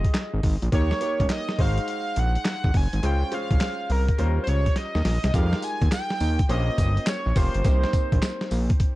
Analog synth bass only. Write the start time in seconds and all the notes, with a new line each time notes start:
0.34 G#1
0.44 G#1
0.62 A#1
0.72 D#2
1.20 C#2
1.59 G#1
2.17 A#1
2.64 G#1
2.74 F#1
2.93 G#1
3.03 C#2
3.51 C2
3.90 C2
4.19 D#2
4.48 C#2
4.95 D#2
5.05 A#1
5.24 C2
5.34 F2
5.82 D#2
6.21 D#2
6.50 A#1
6.78 G1
7.26 A#1
7.36 F1
7.55 G1
7.65 C2
8.12 A#1
8.52 A#1